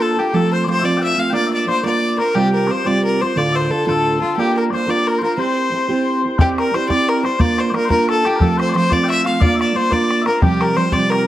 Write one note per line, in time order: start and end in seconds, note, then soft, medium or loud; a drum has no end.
0.00 0.18 A#3 medium
0.00 0.18 D4 medium
0.00 0.18 F4 medium
0.00 0.20 A4 medium
0.00 0.19 A4 medium
0.00 0.16 A#4 medium
0.17 0.33 D4 soft
0.17 0.33 F4 soft
0.17 0.34 G4 medium
0.17 0.36 G4 medium
0.17 0.33 A#4 soft
0.33 0.66 F3 medium
0.33 0.67 A3 medium
0.33 0.66 C4 medium
0.33 0.68 F4 medium
0.33 0.52 A4 loud
0.33 0.54 A4 medium
0.53 0.67 C5 medium
0.53 0.64 C5 medium
0.64 0.83 F3 soft
0.64 0.82 C4 soft
0.64 0.69 D5 medium
0.68 0.82 A3 medium
0.68 0.81 F4 medium
0.68 0.79 C5 medium
0.68 0.87 C5 loud
0.79 1.16 A3 medium
0.79 1.16 F4 medium
0.79 0.83 E5 medium
0.83 1.32 F3 medium
0.83 1.18 C4 medium
0.83 0.97 D5 medium
0.83 1.03 D5 medium
0.97 1.02 G5 medium
1.02 1.18 E5 medium
1.02 1.21 E5 medium
1.16 1.33 A3 soft
1.16 1.32 C4 soft
1.16 1.32 F4 soft
1.16 1.30 F5 medium
1.16 1.34 F5 medium
1.30 1.66 A#3 medium
1.30 1.67 D4 medium
1.30 1.69 F4 medium
1.30 1.47 D5 medium
1.30 1.33 G5 medium
1.34 1.69 A#4 medium
1.34 1.52 D5 loud
1.47 1.51 E5 medium
1.51 1.68 D5 medium
1.67 1.84 A#3 medium
1.67 1.83 D4 soft
1.67 1.83 F4 medium
1.67 1.82 A#4 medium
1.67 1.84 C5 medium
1.67 1.84 C5 loud
1.83 2.19 A#3 medium
1.83 2.19 D4 medium
1.83 2.19 F4 medium
1.83 2.17 A#4 medium
1.83 2.19 D5 medium
1.83 2.17 D5 loud
2.18 2.34 F4 soft
2.18 2.34 A#4 soft
2.18 2.35 A#4 medium
2.18 2.36 A#4 medium
2.35 2.69 C3 medium
2.35 2.70 G3 medium
2.35 2.67 C4 medium
2.35 2.70 F4 medium
2.35 2.53 G4 loud
2.35 2.67 G4 medium
2.35 2.70 G4 medium
2.35 2.70 C5 medium
2.53 2.73 A#4 medium
2.67 2.85 C4 medium
2.67 2.85 F4 medium
2.67 2.84 G4 medium
2.67 2.86 C5 medium
2.67 2.71 D5 medium
2.71 2.88 C5 medium
2.71 2.84 C5 soft
2.85 3.21 C3 medium
2.85 3.20 G3 medium
2.85 3.20 C4 medium
2.85 3.22 F4 medium
2.85 3.20 G4 medium
2.85 3.19 C5 medium
2.85 3.22 D5 medium
2.85 3.04 D5 medium
3.05 3.23 A#4 medium
3.21 3.36 F4 soft
3.21 3.39 C5 medium
3.21 3.38 C5 medium
3.36 3.70 D2 medium
3.36 3.70 A2 medium
3.36 3.69 D3 medium
3.36 3.70 D4 medium
3.36 3.71 F4 medium
3.36 3.71 A4 medium
3.36 3.57 D5 loud
3.36 3.53 D5 medium
3.53 3.72 C5 medium
3.53 3.57 E5 medium
3.57 3.89 C5 medium
3.70 3.86 D3 soft
3.70 3.86 D4 medium
3.70 3.85 F4 medium
3.70 3.86 A4 loud
3.70 3.85 A4 medium
3.87 4.22 D2 medium
3.87 4.22 A2 medium
3.87 4.21 D3 medium
3.87 4.21 D4 medium
3.87 4.20 F4 medium
3.87 4.19 A4 medium
3.87 4.39 A4 medium
4.21 4.37 D3 soft
4.21 4.37 D4 soft
4.21 4.37 F4 soft
4.21 4.36 F4 medium
4.37 4.71 A#3 medium
4.37 4.72 D4 medium
4.37 4.72 F4 medium
4.37 4.54 G4 medium
4.37 4.57 G4 medium
4.37 4.73 A#4 medium
4.57 4.70 A#4 medium
4.57 4.64 A#4 medium
4.70 4.87 A#3 soft
4.70 4.87 D4 soft
4.70 4.87 F4 medium
4.70 4.86 A#4 medium
4.70 4.92 C5 medium
4.70 4.89 C5 medium
4.70 4.74 D5 medium
4.87 5.22 A#3 medium
4.87 5.22 D4 medium
4.87 5.22 F4 medium
4.87 5.20 A#4 medium
4.87 5.08 D5 medium
4.87 5.09 D5 medium
5.07 5.22 A#4 medium
5.07 5.19 A#4 medium
5.19 5.37 A#4 soft
5.19 5.23 C5 medium
5.23 5.38 D4 soft
5.23 5.38 F4 soft
5.23 5.39 A#4 medium
5.23 5.37 A#4 medium
5.37 5.71 C4 medium
5.37 5.72 E4 medium
5.37 5.73 G4 medium
5.37 6.19 C5 medium
5.37 5.73 C5 medium
5.37 6.39 C5 medium
5.72 5.88 C4 medium
5.72 5.89 E4 soft
5.72 5.88 G4 soft
5.72 5.87 C5 medium
5.88 6.24 C4 medium
5.88 6.24 E4 medium
5.88 6.23 G4 medium
5.88 6.22 C5 medium
6.23 6.38 E4 soft
6.23 6.38 G4 soft
6.23 6.39 C5 soft
6.38 6.72 C4 medium
6.38 6.73 E4 medium
6.38 6.58 G4 medium
6.38 6.74 G4 medium
6.38 6.49 G4 medium
6.38 6.74 D5 medium
6.38 bodhran medium
6.58 6.74 A#4 medium
6.58 6.77 A#4 medium
6.58 bodhran medium
6.73 6.89 C4 soft
6.73 6.89 E4 medium
6.73 6.88 G4 medium
6.73 6.90 C5 medium
6.73 6.88 C5 medium
6.73 6.87 D5 medium
6.73 bodhran medium
6.89 7.25 C4 medium
6.89 7.24 E4 medium
6.89 7.24 G4 medium
6.89 7.22 D5 medium
6.89 7.10 D5 loud
6.89 7.09 D5 medium
6.89 bodhran medium
7.09 7.24 A#4 medium
7.09 bodhran medium
7.23 7.39 E4 soft
7.23 7.40 G4 soft
7.23 7.39 C5 medium
7.23 7.42 C5 medium
7.23 7.39 D5 medium
7.23 bodhran medium
7.39 7.72 A#3 medium
7.39 7.73 D4 medium
7.39 7.75 F4 medium
7.39 7.75 A#4 medium
7.39 7.58 D5 medium
7.39 7.62 D5 loud
7.39 bodhran medium
7.58 7.70 C5 medium
7.58 7.75 C5 medium
7.58 bodhran medium
7.70 7.90 A#3 soft
7.70 7.74 D5 medium
7.74 7.90 D4 medium
7.74 7.89 F4 medium
7.74 7.86 A#4 medium
7.74 7.90 A#4 loud
7.74 7.88 A#4 medium
7.74 bodhran medium
7.86 8.23 A#4 medium
7.86 7.90 C5 medium
7.90 8.25 A#3 medium
7.90 8.25 D4 medium
7.90 8.25 F4 medium
7.90 8.08 A#4 medium
7.90 8.08 A#4 loud
7.90 bodhran medium
8.08 8.25 A4 medium
8.08 8.28 A4 loud
8.08 bodhran medium
8.25 8.41 D4 soft
8.25 8.36 G4 medium
8.25 8.44 G4 medium
8.25 bodhran soft
8.36 8.58 A4 medium
8.36 8.39 A#4 medium
8.40 8.74 F3 medium
8.40 8.75 A3 medium
8.40 8.74 C4 medium
8.40 8.77 F4 medium
8.40 8.60 A4 medium
8.40 bodhran medium
8.58 8.69 C5 medium
8.58 8.75 C5 medium
8.58 bodhran medium
8.69 8.73 D5 medium
8.73 8.91 F3 medium
8.73 8.90 A3 medium
8.73 8.91 C4 medium
8.73 8.90 F4 medium
8.73 8.90 C5 medium
8.73 8.94 C5 loud
8.73 bodhran medium
8.90 9.40 F3 medium
8.90 9.26 A3 medium
8.90 9.26 C4 medium
8.90 9.25 F4 medium
8.90 9.04 D5 medium
8.90 9.10 D5 loud
8.90 bodhran medium
9.04 9.08 G5 medium
9.08 9.25 E5 medium
9.08 9.25 E5 loud
9.08 bodhran medium
9.25 9.42 A3 soft
9.25 9.41 F4 soft
9.25 9.40 F5 medium
9.25 9.43 F5 medium
9.25 bodhran medium
9.29 9.41 C4 soft
9.40 9.74 A#3 medium
9.40 9.75 D4 medium
9.40 9.76 F4 medium
9.40 9.76 A#4 medium
9.40 9.55 D5 medium
9.40 9.60 D5 loud
9.40 bodhran medium
9.55 9.60 E5 medium
9.60 9.76 D5 medium
9.60 9.78 D5 medium
9.60 bodhran medium
9.75 9.91 A#3 medium
9.75 9.91 D4 medium
9.75 9.90 F4 medium
9.75 9.89 A#4 medium
9.75 9.91 C5 medium
9.75 9.94 C5 loud
9.91 10.27 A#3 medium
9.91 10.27 D4 medium
9.91 10.26 F4 medium
9.91 10.24 A#4 medium
9.91 10.22 D5 medium
9.91 10.27 D5 medium
9.91 bodhran medium
10.11 bodhran medium
10.22 10.42 A#4 soft
10.22 10.26 E5 medium
10.26 10.42 D4 soft
10.26 10.42 F4 soft
10.26 10.42 A#4 medium
10.26 bodhran medium
10.42 10.77 C3 medium
10.42 10.75 F3 medium
10.42 10.76 G3 medium
10.42 10.77 C4 medium
10.42 10.62 G4 medium
10.42 10.63 G4 medium
10.42 10.78 G4 loud
10.42 bodhran loud
10.61 10.78 A#4 medium
10.61 10.77 A#4 medium
10.61 bodhran medium
10.76 10.92 F3 soft
10.76 10.91 G3 medium
10.76 10.91 C4 medium
10.76 10.91 G4 medium
10.76 10.94 C5 medium
10.76 10.93 C5 medium
10.76 bodhran medium
10.92 11.27 C3 medium
10.92 11.27 F3 medium
10.92 11.27 G3 medium
10.92 11.27 C4 medium
10.92 11.25 G4 medium
10.92 11.11 D5 loud
10.92 11.12 D5 medium
10.92 bodhran medium
11.10 11.27 A#4 loud
11.10 11.27 A#4 medium
11.10 bodhran medium